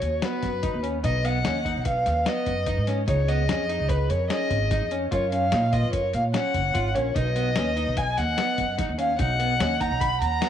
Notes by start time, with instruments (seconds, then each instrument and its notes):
Already playing: vibraphone F#4, violin C#5
0.02 upright bass D#2, closed hi-hat
0.21 clean electric guitar B3, vibraphone F#4, violin B4, snare, closed hi-hat
0.43 upright bass F#2, kick, snare, closed hi-hat
0.63 clean electric guitar D#4, kick, closed hi-hat
0.74 upright bass D#2
0.83 clean electric guitar C#4, closed hi-hat
1.04 upright bass B1, clean electric guitar D#4, vibraphone B4, violin D#5, kick, closed hi-hat
1.24 clean electric guitar B3, vibraphone D#5, violin F#5, closed hi-hat
1.44 upright bass D#2, clean electric guitar C#4, snare, closed hi-hat
1.65 clean electric guitar D#4, kick, closed hi-hat
1.76 upright bass B1
1.85 vibraphone B4, violin F5, kick, closed hi-hat
2.06 upright bass D#2, snare, closed hi-hat
2.26 clean electric guitar B3, vibraphone B4, violin D#5, snare, closed hi-hat
2.46 upright bass F#2, kick, closed hi-hat
2.66 clean electric guitar D#4, kick, closed hi-hat
2.78 upright bass G#2
2.87 clean electric guitar C#4, snare, closed hi-hat
3.08 upright bass C#2, clean electric guitar D#4, vibraphone G#4, violin C#5, kick, closed hi-hat
3.28 clean electric guitar B3, vibraphone G#4, violin D#5, closed hi-hat
3.49 upright bass F2, clean electric guitar C#4, snare, closed hi-hat
3.69 clean electric guitar D#4, closed hi-hat
3.79 upright bass C#2
3.89 vibraphone G#4, violin B4, kick, closed hi-hat
4.09 upright bass F2, vibraphone A#4, violin C#5, closed hi-hat
4.30 clean electric guitar C#4, vibraphone G#4, violin D#5, snare, closed hi-hat
4.51 upright bass G#1, kick, closed hi-hat
4.71 clean electric guitar D#4, kick, snare, closed hi-hat
4.82 upright bass F2
4.91 clean electric guitar C#4, closed hi-hat
5.11 upright bass F#2, clean electric guitar F4, vibraphone A#4, violin C#5, kick, closed hi-hat
5.32 clean electric guitar C#4, vibraphone C#5, violin F5, closed hi-hat
5.52 upright bass A#2, clean electric guitar D#4, snare, closed hi-hat
5.73 clean electric guitar F4, vibraphone B4, violin D#5, kick, closed hi-hat
5.83 upright bass F#2
5.93 vibraphone A#4, violin C#5, kick, closed hi-hat
6.13 upright bass A#2, vibraphone C#5, violin F5, closed hi-hat
6.33 clean electric guitar C#4, vibraphone C#5, violin F#5, snare, closed hi-hat
6.54 upright bass F#1, kick, closed hi-hat
6.74 upright bass G#1, clean electric guitar F4, kick, closed hi-hat
6.94 upright bass A#1, clean electric guitar C#4, vibraphone A#4, violin C#5, closed hi-hat
7.15 upright bass B1, clean electric guitar D#4, vibraphone B4, violin D#5, kick, closed hi-hat
7.36 clean electric guitar B3, closed hi-hat
7.56 upright bass D#2, clean electric guitar C#4, snare, closed hi-hat
7.76 clean electric guitar D#4, closed hi-hat
7.87 upright bass B1
7.97 vibraphone D#5, violin G#5, kick, closed hi-hat
8.17 upright bass D#2, vibraphone D#5, violin F#5, snare, closed hi-hat
8.37 clean electric guitar B3, snare, closed hi-hat
8.58 upright bass F#2, kick, closed hi-hat
8.78 clean electric guitar D#4, kick, snare, closed hi-hat
8.89 upright bass D#2
8.99 clean electric guitar C#4, vibraphone C#5, violin F5, closed hi-hat
9.19 upright bass B1, clean electric guitar D#4, vibraphone D#5, violin F#5, kick, closed hi-hat
9.39 clean electric guitar B3, closed hi-hat
9.60 upright bass D#2, clean electric guitar C#4, snare, closed hi-hat
9.80 clean electric guitar D#4, vibraphone F#5, violin A#5, kick, closed hi-hat
9.91 upright bass B1
10.01 vibraphone F#5, violin B5, kick, closed hi-hat
10.21 upright bass D#2, vibraphone F#5, violin A#5, closed hi-hat
10.41 clean electric guitar B3, snare, closed hi-hat